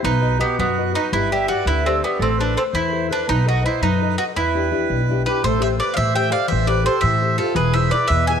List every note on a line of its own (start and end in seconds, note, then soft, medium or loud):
0.03 0.39 B1 medium
0.03 0.39 B3 medium
0.03 0.38 D#4 medium
0.03 0.38 B4 medium
0.21 0.38 F#4 soft
0.21 0.39 B4 soft
0.21 0.39 D#5 soft
0.39 0.57 B3 medium
0.39 0.69 F#4 soft
0.39 0.57 G4 medium
0.39 0.70 B4 soft
0.39 0.69 D#5 soft
0.58 0.94 F#2 medium
0.58 0.94 F#3 medium
0.58 0.93 B3 medium
0.58 0.92 F#4 medium
0.78 0.94 F#4 soft
0.78 0.94 B4 soft
0.78 0.94 D#5 soft
0.94 1.11 D#4 medium
0.94 1.09 F#4 soft
0.94 1.10 B4 medium
0.94 1.09 B4 soft
0.94 1.09 D#5 soft
1.12 1.48 G1 medium
1.12 1.48 G3 medium
1.12 1.32 E4 medium
1.12 1.31 B4 medium
1.32 1.48 G4 soft
1.32 1.48 G4 medium
1.32 1.49 B4 soft
1.32 1.50 D5 medium
1.32 1.48 E5 medium
1.48 1.65 F#4 medium
1.48 1.79 G4 soft
1.48 1.79 B4 soft
1.48 1.66 D5 medium
1.48 1.79 D5 soft
1.66 2.01 D2 medium
1.66 2.02 D3 medium
1.66 1.87 E4 medium
1.66 1.84 B4 medium
1.85 2.04 C4 medium
1.85 2.03 G4 soft
1.85 2.01 A4 medium
1.85 2.04 B4 soft
1.85 2.04 D5 medium
2.02 2.20 B3 medium
2.02 2.18 G4 medium
2.02 2.18 G4 soft
2.02 2.18 B4 soft
2.02 2.18 D5 soft
2.19 2.55 A1 medium
2.19 2.56 A3 medium
2.19 2.41 C4 medium
2.19 2.38 A4 medium
2.37 2.58 D4 medium
2.37 2.56 A4 soft
2.37 2.55 B4 medium
2.37 2.55 B4 soft
2.37 2.57 C5 medium
2.54 2.62 C4 medium
2.54 2.63 A4 medium
2.54 2.86 A4 soft
2.54 2.86 B4 soft
2.54 2.87 C5 medium
2.72 3.08 E2 medium
2.72 3.09 E3 medium
2.72 3.08 E4 medium
2.72 3.07 C5 medium
2.93 3.10 A4 soft
2.93 3.09 B4 soft
2.93 3.10 C5 soft
3.10 3.28 D4 medium
3.10 3.24 A4 soft
3.10 3.26 B4 medium
3.10 3.24 B4 soft
3.10 3.25 C5 soft
3.28 3.63 B1 medium
3.28 3.47 B3 medium
3.28 3.46 D#4 medium
3.28 3.46 B4 medium
3.46 3.65 F#4 medium
3.46 3.62 A4 soft
3.46 3.62 B4 soft
3.46 3.63 D#5 medium
3.63 3.81 E4 medium
3.63 3.93 A4 soft
3.63 3.93 B4 soft
3.63 3.81 C5 medium
3.63 3.93 D#5 soft
3.82 4.16 F#2 medium
3.82 4.17 F#3 medium
3.82 4.16 D#4 medium
3.82 4.15 B4 medium
4.02 4.16 A4 soft
4.02 4.18 B4 soft
4.02 4.18 D#5 soft
4.18 4.23 F#4 medium
4.18 4.31 A4 soft
4.18 4.32 B4 soft
4.18 4.26 D#5 medium
4.18 4.32 D#5 medium
4.36 4.71 E2 medium
4.36 4.71 E3 medium
4.36 5.22 E4 medium
4.36 5.23 B4 medium
4.55 4.70 D4 soft
4.55 4.71 E4 soft
4.55 4.71 G4 soft
4.72 5.01 D4 soft
4.72 5.01 E4 soft
4.72 5.01 G4 soft
4.90 5.25 B1 medium
4.90 5.25 B2 medium
5.09 5.26 D4 soft
5.09 5.26 E4 soft
5.09 5.27 G4 soft
5.26 5.40 D4 soft
5.26 5.40 E4 soft
5.26 5.41 G4 soft
5.26 5.43 G4 medium
5.26 5.42 B4 medium
5.44 5.78 A1 medium
5.44 5.79 A3 medium
5.44 5.62 A4 medium
5.44 5.61 C5 medium
5.60 5.77 G4 soft
5.60 5.77 A4 soft
5.60 5.78 C5 soft
5.60 5.71 C5 medium
5.60 5.67 E5 medium
5.78 6.07 G4 soft
5.78 6.08 A4 soft
5.78 5.93 B4 medium
5.78 6.08 C5 medium
5.78 5.93 D5 medium
5.94 6.32 A2 medium
5.94 6.31 E3 medium
5.94 5.97 D5 medium
5.94 6.14 E5 medium
5.94 5.96 F5 medium
5.98 6.15 C5 medium
6.15 6.29 G4 medium
6.15 6.29 A4 soft
6.15 6.30 C5 medium
6.15 6.31 E5 medium
6.15 6.32 G5 medium
6.30 6.60 G4 soft
6.30 6.60 A4 soft
6.30 6.61 C5 medium
6.30 6.48 D5 medium
6.30 6.48 F5 medium
6.48 6.84 E3 medium
6.48 6.66 C5 medium
6.48 6.67 E5 medium
6.52 6.86 A1 medium
6.67 6.83 G4 soft
6.67 6.83 A4 soft
6.67 6.85 B4 medium
6.67 6.84 C5 soft
6.67 6.85 D5 medium
6.84 7.14 G4 medium
6.84 7.14 A4 soft
6.84 7.02 A4 medium
6.84 7.14 C5 medium
6.84 7.02 C5 medium
7.01 7.38 A2 medium
7.01 7.38 E3 medium
7.01 7.37 C5 medium
7.01 7.36 E5 medium
7.22 7.38 G4 soft
7.22 7.38 A4 soft
7.22 7.38 C5 soft
7.38 7.55 F4 medium
7.38 7.53 G4 soft
7.38 7.55 A4 medium
7.38 7.53 A4 soft
7.38 7.53 C5 medium
7.55 7.90 E1 medium
7.55 7.91 E3 medium
7.55 7.73 G#4 medium
7.55 7.74 B4 medium
7.74 7.92 E4 soft
7.74 7.93 G#4 soft
7.74 7.93 B4 medium
7.74 7.91 C5 medium
7.74 7.91 E5 medium
7.89 8.07 B4 medium
7.89 8.08 D5 medium
7.94 8.22 E4 soft
7.94 8.23 G#4 soft
7.94 8.23 B4 medium
8.08 8.40 E2 medium
8.08 8.40 B2 medium
8.08 8.27 B4 medium
8.08 8.27 E5 medium
8.27 8.40 E4 soft
8.27 8.40 G#4 soft
8.27 8.40 B4 medium
8.27 8.40 E5 medium
8.27 8.40 G#5 medium